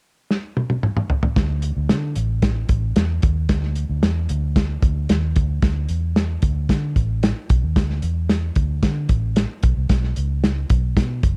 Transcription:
0.31 snare
0.57 high tom
0.70 high tom
0.83 mid tom
0.97 mid tom
1.10 floor tom
1.23 floor tom
1.36 fingered electric bass D2, kick, snare, closed hi-hat
1.62 closed hi-hat
1.77 fingered electric bass D2
1.89 fingered electric bass D3, snare, closed hi-hat
2.16 fingered electric bass A1, closed hi-hat
2.42 kick, snare, closed hi-hat
2.69 fingered electric bass A1, kick, closed hi-hat
2.96 fingered electric bass E2, snare, closed hi-hat
3.22 fingered electric bass D#2, kick, closed hi-hat
3.49 fingered electric bass D2, kick, snare, closed hi-hat
3.63 snare
3.76 closed hi-hat
3.89 fingered electric bass D2
4.03 fingered electric bass E2, snare, closed hi-hat
4.29 fingered electric bass D2, closed hi-hat
4.56 kick, snare, closed hi-hat
4.82 fingered electric bass D2, kick, closed hi-hat
5.09 fingered electric bass D#2, snare, closed hi-hat
5.36 fingered electric bass D2, kick, closed hi-hat
5.62 fingered electric bass D2, kick, snare, closed hi-hat
5.89 fingered electric bass E2, closed hi-hat
6.16 snare, closed hi-hat
6.42 fingered electric bass D2, kick, closed hi-hat
6.69 fingered electric bass D3, kick, snare, closed hi-hat
6.96 fingered electric bass A1, kick, closed hi-hat
7.23 snare, closed hi-hat
7.49 fingered electric bass B1, kick, closed hi-hat
7.63 fingered electric bass D#2
7.76 fingered electric bass D2, kick, snare, closed hi-hat
7.90 snare
8.02 fingered electric bass E2, closed hi-hat
8.29 snare, closed hi-hat
8.55 fingered electric bass D2, kick, closed hi-hat
8.83 fingered electric bass D3, kick, snare, closed hi-hat
9.09 fingered electric bass A1, kick, closed hi-hat
9.36 snare, closed hi-hat
9.63 fingered electric bass B1, kick, closed hi-hat
9.77 fingered electric bass C2
9.89 fingered electric bass B1, kick, snare, closed hi-hat
10.03 snare
10.16 fingered electric bass C#2, closed hi-hat
10.44 snare, closed hi-hat
10.70 fingered electric bass B1, kick, closed hi-hat
10.97 fingered electric bass B2, kick, snare, closed hi-hat
11.23 fingered electric bass F#1, kick, closed hi-hat

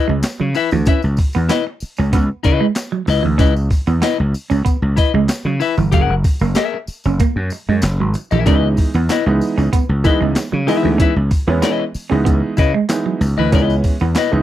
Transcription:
0.08 slap bass C#2, clean electric guitar G#3
0.23 snare, clap, closed hi-hat, tambourine
0.40 slap bass C#3, clean electric guitar F#3
0.55 clean electric guitar E4 B4 E5, muted clean electric guitar stroke, open hi-hat, tambourine
0.71 slap bass D2, clean electric guitar E3, tambourine
0.85 clean electric guitar C#4 E4 B4 E5, kick, closed hi-hat, tambourine
1.02 slap bass C#2, tambourine
1.17 muted clean electric guitar stroke, kick, open hi-hat, tambourine
1.33 slap bass E2, clean electric guitar B3, tambourine
1.49 clean electric guitar B3 E4 B4 D#5, snare, clap, closed hi-hat, tambourine
1.67 muted clean electric guitar stroke
1.80 muted slap bass stroke, open hi-hat, tambourine
1.97 slap bass C#2, clean electric guitar C#4, tambourine
2.13 slap bass C#2, clean electric guitar B3, kick, closed hi-hat, tambourine
2.43 slap bass C#3, clean electric guitar E4 B4 D#5, muted clean electric guitar stroke, kick, closed hi-hat, tambourine
2.61 clean electric guitar G#3
2.75 snare, clap, closed hi-hat, tambourine
2.92 clean electric guitar F#3
3.06 slap bass C#2, clean electric guitar E4 B4 D#5, muted clean electric guitar stroke, open hi-hat, tambourine
3.23 slap bass D2, clean electric guitar E3
3.38 slap bass C#2, clean electric guitar C#4 E4 B4 D#5, kick, closed hi-hat, tambourine
3.56 tambourine
3.70 muted clean electric guitar stroke, kick, open hi-hat, tambourine
3.87 slap bass E2, clean electric guitar B3, tambourine
4.02 clean electric guitar B3 E4 B4 D#5, snare, clap, closed hi-hat, tambourine
4.18 slap bass C#2, muted clean electric guitar stroke
4.34 open hi-hat, tambourine
4.50 slap bass C#2, clean electric guitar C#4, tambourine
4.65 clean electric guitar B3, kick, closed hi-hat, tambourine
4.82 slap bass C#2
4.96 clean electric guitar E4 B4 D#5, muted clean electric guitar stroke, kick, closed hi-hat, tambourine
5.14 slap bass C#2, clean electric guitar G#3
5.29 snare, clap, closed hi-hat, tambourine
5.45 slap bass C#3, clean electric guitar F#3
5.60 clean electric guitar E4 B4 E5, muted clean electric guitar stroke, open hi-hat, tambourine
5.78 slap bass G1, clean electric guitar E3, tambourine
5.92 slap bass F#1, clean electric guitar F#3 G#4 A#4 F#5, kick, closed hi-hat, tambourine
6.09 slap bass F#1
6.24 muted clean electric guitar stroke, kick, open hi-hat, tambourine
6.39 slap bass F#1, clean electric guitar A#3, tambourine
6.55 clean electric guitar A#3 G#4 A#4 E5, snare, clap, closed hi-hat, tambourine
6.74 muted clean electric guitar stroke
6.87 muted slap bass stroke, open hi-hat, tambourine
7.04 slap bass F#1, clean electric guitar C#4, tambourine
7.20 clean electric guitar A#3, kick, closed hi-hat, tambourine
7.36 slap bass F#2
7.50 muted clean electric guitar stroke, open hi-hat, tambourine
7.69 slap bass F#2, clean electric guitar G#3
7.82 slap bass F#1, snare, clap, closed hi-hat, tambourine
8.00 slap bass G#1, clean electric guitar F#3
8.14 muted clean electric guitar stroke, closed hi-hat, tambourine
8.31 slap bass A#1, clean electric guitar E3 G#4 A#4 E5, tambourine
8.46 slap bass C#2, upright piano E3 G#3 B3 D#4, clean electric guitar C#4 E4 B4 D#5, kick, closed hi-hat, tambourine
8.77 muted clean electric guitar stroke, kick, open hi-hat, tambourine
8.94 slap bass E2, clean electric guitar B3, tambourine
9.09 clean electric guitar B3 E4 B4 D#5, snare, clap, closed hi-hat, tambourine
9.26 slap bass C#2, upright piano E3 G#3 B3 D#4, muted clean electric guitar stroke
9.41 open hi-hat, tambourine
9.58 slap bass C#2, clean electric guitar C#4, tambourine
9.73 clean electric guitar B3, kick, closed hi-hat, tambourine
9.89 slap bass C#2
10.04 upright piano E3 G#3 B3 D#4, clean electric guitar E4 B4 D#5, muted clean electric guitar stroke, kick, closed hi-hat, tambourine
10.21 slap bass C#2, clean electric guitar G#3
10.36 snare, clap, closed hi-hat, tambourine
10.52 slap bass C#3, clean electric guitar F#3
10.67 upright piano E3 G#3 B3 D#4, clean electric guitar E4 B4 E5, muted clean electric guitar stroke, open hi-hat, tambourine
10.83 slap bass D2, clean electric guitar E3
10.98 clean electric guitar C#4 E4 B4 E5, kick, closed hi-hat, tambourine
11.16 slap bass C#2
11.31 muted clean electric guitar stroke, kick, open hi-hat, tambourine
11.47 slap bass E2, upright piano E3 G#3 B3 C#4, clean electric guitar B3
11.62 clean electric guitar B3 E4 B4 D#5, snare, clap, closed hi-hat, tambourine
11.80 muted clean electric guitar stroke
11.94 muted slap bass stroke, open hi-hat, tambourine
12.10 slap bass C#2, upright piano E3 G#3 B3 D#4, clean electric guitar C#4
12.25 slap bass C#2, clean electric guitar B3, kick, closed hi-hat, tambourine
12.57 slap bass C#3, clean electric guitar E4 B4 D#5, muted clean electric guitar stroke, kick, closed hi-hat, tambourine
12.74 clean electric guitar G#3
12.89 upright piano E3 G#3 B3 D#4, snare, clap, closed hi-hat, tambourine
13.06 clean electric guitar F#3
13.21 slap bass C#2, muted clean electric guitar stroke, open hi-hat, tambourine
13.38 slap bass D2, clean electric guitar E3 E4 B4 D#5
13.52 slap bass C#2, upright piano E3 G#3 B3 C#4, clean electric guitar C#4 E4 B4 D#5, kick, closed hi-hat, tambourine
13.70 tambourine
13.84 muted clean electric guitar stroke, kick, open hi-hat, tambourine
14.00 slap bass E2, clean electric guitar B3, tambourine
14.15 clean electric guitar B3 E4 B4 D#5, snare, clap, closed hi-hat, tambourine
14.32 slap bass C#2, upright piano E3 G#3 B3 D#4, muted clean electric guitar stroke

